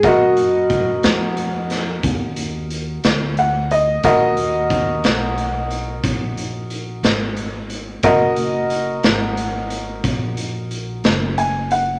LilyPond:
<<
  \new Staff \with { instrumentName = "Upright piano" } { \time 12/8 \key ees \minor \tempo 4. = 60 << { r1 r4 ges''8 ees''8 | r1. | r1 r4 aes''8 ges''8 | } \\ { <ges' bes' ees''>1. | <ges' bes' ees''>1. | <ges' bes' ees''>1. | } >> }
  \new Staff \with { instrumentName = "Electric slide guitar" } { \time 12/8 \key ees \minor ges'2. r2. | r1. | r1. | }
  \new Staff \with { instrumentName = "Upright bass" } { \clef bass \time 12/8 \key ees \minor ges,4. f,4. ees,4. d,4. | ees,4. ces,4. bes,,4. aes,,4. | ges,,4. aes,,4. bes,,4. ges,,4. | }
  \new DrumStaff \with { instrumentName = "Drums" } \drummode { \time 12/8 <hh bd>8 hh8 <hh bd>8 <hh sn>8 hh8 <hh sn>8 <hh bd>8 hh8 hh8 <hh sn>8 hh8 hh8 | <hh bd>8 hh8 <hh bd>8 <hh sn>8 hh8 hh8 <hh bd>8 hh8 hh8 <hh sn>8 hh8 hh8 | <hh bd>8 hh8 hh8 <hh sn>8 hh8 hh8 <hh bd>8 hh8 hh8 <hh sn>8 hh8 hh8 | }
>>